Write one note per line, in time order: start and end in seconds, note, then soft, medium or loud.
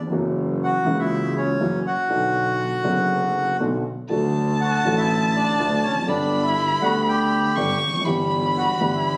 0.00 0.06 E2 medium
0.07 0.12 F2 medium
0.07 0.81 E3 medium
0.11 0.82 F#1 medium
0.11 0.82 F#2 medium
0.11 0.82 F#3 medium
0.11 0.82 A#3 medium
0.11 0.82 C#4 medium
0.11 0.83 F#4 medium
0.63 0.98 F#4 medium
0.63 1.01 F#5 medium
0.84 1.57 C#2 medium
0.84 1.57 C#3 medium
0.84 1.56 E3 medium
0.84 1.57 A#3 medium
0.84 1.57 C#4 medium
0.89 1.58 F#4 medium
0.99 1.34 E4 medium
0.99 1.33 E5 medium
1.37 1.83 C#4 medium
1.37 1.83 C#5 medium
1.61 1.82 F#1 medium
1.61 1.81 F#2 medium
1.61 1.82 E3 medium
1.61 1.82 F#3 medium
1.61 1.81 A#3 medium
1.61 1.82 C#4 medium
1.61 1.82 F#4 medium
1.87 3.57 F#4 medium
1.87 3.57 F#5 medium
2.08 2.81 B1 medium
2.08 2.81 B2 medium
2.08 2.80 D3 medium
2.08 2.81 F#3 medium
2.08 2.82 B3 medium
2.13 2.82 F#4 medium
2.83 3.56 F#1 medium
2.83 3.56 F#2 medium
2.83 3.55 D3 medium
2.83 3.56 F#3 medium
2.83 3.57 B3 medium
2.83 3.57 F#4 medium
3.60 3.81 B1 medium
3.60 3.81 B2 medium
3.60 3.81 D3 medium
3.60 3.81 F#3 medium
3.60 3.81 B3 medium
3.60 3.82 F#4 medium
4.09 4.81 D2 medium
4.09 4.81 D3 medium
4.09 4.81 F#3 medium
4.09 4.82 A3 soft
4.09 4.82 F#4 medium
4.09 6.10 A5 medium
4.61 4.96 F#4 medium
4.61 4.95 F#5 medium
4.84 5.55 A1 medium
4.84 5.56 A1 medium
4.84 5.56 A2 medium
4.84 5.55 D3 medium
4.84 5.56 F#3 medium
4.84 5.57 A3 medium
4.84 5.57 F#4 medium
4.98 5.33 E4 medium
4.98 5.32 E5 medium
5.36 5.82 D4 medium
5.36 5.86 D5 medium
5.58 5.79 D2 medium
5.58 5.80 D2 medium
5.58 5.80 D3 medium
5.58 5.80 F#3 medium
5.58 5.80 A3 medium
5.58 5.80 F#4 medium
5.82 6.07 F1 medium
5.82 5.96 C#4 medium
5.82 5.94 C#5 medium
5.91 5.97 E2 soft
5.97 6.03 F2 soft
6.02 6.08 F#2 medium
6.06 6.78 G1 medium
6.06 6.79 G2 medium
6.06 6.77 D3 medium
6.06 6.78 G3 medium
6.06 6.79 B3 medium
6.06 6.44 D4 medium
6.06 6.42 D5 medium
6.06 7.57 B5 medium
6.10 6.79 G4 medium
6.44 6.80 E4 medium
6.44 6.79 E5 medium
6.81 7.52 D2 medium
6.81 7.53 D2 medium
6.81 7.53 D3 medium
6.81 7.52 G3 medium
6.81 7.53 B3 medium
6.81 6.95 F#4 medium
6.81 7.54 G4 medium
6.81 6.93 F#5 medium
7.08 7.79 G4 medium
7.08 7.78 G5 medium
7.55 7.77 G1 medium
7.55 7.77 G2 medium
7.55 7.77 D3 medium
7.55 7.77 G3 medium
7.55 7.77 B3 medium
7.55 7.77 G4 medium
7.55 8.06 C#6 medium
7.81 8.04 F1 medium
7.88 7.94 E2 soft
7.94 8.00 F2 medium
8.01 8.06 F#2 medium
8.01 8.75 E3 medium
8.01 9.17 B5 loud
8.05 8.76 G1 medium
8.05 8.77 G1 medium
8.05 8.76 G2 medium
8.05 8.76 G3 medium
8.05 8.77 B3 medium
8.05 8.77 G4 medium
8.58 8.91 F#4 medium
8.58 8.95 F#5 medium
8.79 9.17 G1 medium
8.79 9.17 G2 medium
8.79 9.17 E3 medium
8.79 9.17 G3 medium
8.79 9.17 B3 medium
8.83 9.17 G4 medium
8.95 9.17 E4 medium
8.95 9.17 E5 medium